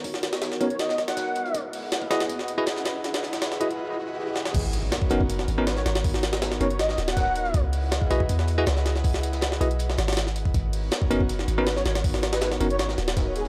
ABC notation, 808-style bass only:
X:1
M:4/4
L:1/8
Q:1/4=160
K:G#m
V:1 name="808-style bass" clef=bass
G,,,3 F,,, G,,, D,,,3 | C,,2 z B,,, E,,2 C,,2- | C,,3 B,,, z4 | G,,,2 z F,,,2 G,,,2 G,,,- |
G,,,3 F,,, G,,, D,,,3 | C,,2 z B,,, E,,2 C,,2- | C,,3 B,,,2 G,,,3 | G,,,2 z F,,,2 G,,,2 G,,,- |
G,,,3 F,,, G,,, D,,,3 |]